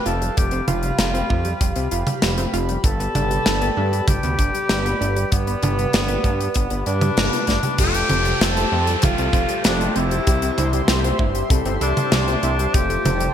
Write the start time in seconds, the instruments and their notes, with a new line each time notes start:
Already playing: analog synth pad G4 F5 G5
0.06 analog synth bass F1, synth arpeggio sound F4, tenor saxophone A4, closed hi-hat
0.21 synth arpeggio sound G3, closed hi-hat
0.37 analog synth bass F1, synth arpeggio sound G3, tenor saxophone G4, analog synth pad B5, kick, closed hi-hat
0.51 synth arpeggio sound C4, closed hi-hat
0.68 analog synth bass F1, tenor saxophone F4, synth arpeggio sound F4, closed hi-hat, mid tom
0.83 synth arpeggio sound G3, closed hi-hat
0.98 analog synth bass F1, synth arpeggio sound G3, snare, closed hi-hat
1.14 synth arpeggio sound C4, closed hi-hat
1.30 analog synth bass F2, synth arpeggio sound F4, kick
1.45 synth arpeggio sound G3, closed hi-hat
1.61 analog synth bass F1, synth arpeggio sound G3, kick, closed hi-hat
1.76 analog synth bass C2, synth arpeggio sound C4, closed hi-hat
1.91 analog synth bass F1, synth arpeggio sound F4, closed hi-hat
2.07 synth arpeggio sound G3, closed hi-hat, mid tom
2.22 analog synth bass F1, synth arpeggio sound G3, snare, closed hi-hat
2.38 synth arpeggio sound C4, closed hi-hat
2.53 analog synth bass F1, synth arpeggio sound F4, closed hi-hat
2.69 synth arpeggio sound G3, closed hi-hat
2.84 analog synth bass G1, synth arpeggio sound G3, tenor saxophone A4, analog synth pad B4 D5, kick, closed hi-hat
3.00 synth arpeggio sound B3, closed hi-hat
3.15 analog synth bass G1, synth arpeggio sound D4, closed hi-hat, mid tom
3.31 synth arpeggio sound G3, closed hi-hat
3.46 analog synth bass G1, synth arpeggio sound G3, snare, closed hi-hat
3.62 synth arpeggio sound B3, closed hi-hat
3.77 analog synth bass G2, synth arpeggio sound D4
3.93 synth arpeggio sound G3, closed hi-hat
4.08 analog synth bass G1, synth arpeggio sound G3, tenor saxophone G4, kick, closed hi-hat, mid tom
4.23 analog synth bass D2, synth arpeggio sound B3, closed hi-hat
4.39 analog synth bass G1, synth arpeggio sound D4, kick, closed hi-hat
4.54 synth arpeggio sound G3, closed hi-hat
4.69 analog synth bass G1, synth arpeggio sound G3, snare, closed hi-hat
4.85 synth arpeggio sound B3, closed hi-hat
5.01 analog synth bass G1, synth arpeggio sound D4, closed hi-hat
5.16 synth arpeggio sound G3, closed hi-hat
5.32 analog synth bass G1, synth arpeggio sound G3, tenor saxophone B3, kick, closed hi-hat
5.47 synth arpeggio sound B3, closed hi-hat
5.63 analog synth bass G1, synth arpeggio sound D4, closed hi-hat, mid tom
5.78 synth arpeggio sound G3, closed hi-hat
5.93 analog synth bass G1, synth arpeggio sound G3, snare, closed hi-hat
6.08 synth arpeggio sound B3, closed hi-hat
6.24 analog synth bass G2, synth arpeggio sound D4, kick, closed hi-hat
6.40 synth arpeggio sound G3, closed hi-hat
6.54 analog synth bass G1, synth arpeggio sound G3, kick, closed hi-hat
6.70 analog synth bass G1, synth arpeggio sound B3, closed hi-hat
6.86 analog synth bass G2, tenor saxophone D4, synth arpeggio sound D4, closed hi-hat
7.01 synth arpeggio sound G3, closed hi-hat, mid tom
7.17 analog synth bass G1, synth arpeggio sound G3, snare, closed hi-hat
7.33 synth arpeggio sound B3, closed hi-hat
7.47 analog synth bass G1, synth arpeggio sound D4, kick, snare, closed hi-hat
7.63 synth arpeggio sound G3, closed hi-hat, mid tom
7.78 analog synth bass F1, synth arpeggio sound G3, grand piano A3 F4 G4, tenor saxophone G4, analog synth pad G4 C5 G5 A5, kick, closed hi-hat, crash, downlifter
7.94 synth arpeggio sound A3, closed hi-hat
8.09 analog synth bass F1, synth arpeggio sound C4, closed hi-hat, mid tom
8.25 synth arpeggio sound G3, closed hi-hat
8.41 analog synth bass F1, synth arpeggio sound G3, tenor saxophone A4, snare, closed hi-hat
8.57 synth arpeggio sound A3, closed hi-hat
8.72 analog synth bass F2, synth arpeggio sound C4
8.87 synth arpeggio sound G3, closed hi-hat
9.02 analog synth bass F1, synth arpeggio sound G3, grand piano A3 F4 A4, tenor saxophone F4, kick, closed hi-hat, mid tom
9.18 analog synth bass C2, synth arpeggio sound A3, closed hi-hat
9.33 analog synth bass F1, synth arpeggio sound C4, kick, closed hi-hat
9.49 synth arpeggio sound G3, closed hi-hat
9.64 analog synth bass F1, synth arpeggio sound G3, tenor saxophone D4, snare, closed hi-hat
9.80 synth arpeggio sound A3, closed hi-hat
9.96 analog synth bass F1, synth arpeggio sound C4, tenor saxophone E4, closed hi-hat
10.11 synth arpeggio sound G3, closed hi-hat
10.27 analog synth bass C2, synth arpeggio sound G3, grand piano C4 E4 G4, analog synth pad E5 C6, kick, closed hi-hat
10.42 synth arpeggio sound C4, closed hi-hat
10.58 analog synth bass C2, synth arpeggio sound E4, closed hi-hat, mid tom
10.73 synth arpeggio sound G3, closed hi-hat
10.88 analog synth bass C2, synth arpeggio sound G3, snare, closed hi-hat
11.04 synth arpeggio sound C4, closed hi-hat
11.19 analog synth bass G1, synth arpeggio sound E4, kick
11.35 synth arpeggio sound G3, closed hi-hat
11.50 analog synth bass C2, synth arpeggio sound G3, grand piano C4 E4 A4, kick, closed hi-hat
11.65 analog synth bass G1, synth arpeggio sound C4, closed hi-hat
11.81 analog synth bass C2, tenor saxophone D4, synth arpeggio sound E4, closed hi-hat
11.97 synth arpeggio sound G3, closed hi-hat, mid tom
12.12 analog synth bass C2, synth arpeggio sound G3, snare, closed hi-hat
12.28 synth arpeggio sound C4, closed hi-hat
12.43 analog synth bass C2, synth arpeggio sound E4, closed hi-hat
12.59 synth arpeggio sound G3, closed hi-hat
12.74 analog synth bass F1, synth arpeggio sound G3, grand piano A3 F4 G4, tenor saxophone G4, analog synth pad G5 A5, kick, closed hi-hat
12.90 synth arpeggio sound A3, closed hi-hat
13.05 analog synth bass F1, synth arpeggio sound C4, closed hi-hat, mid tom
13.20 synth arpeggio sound G3, closed hi-hat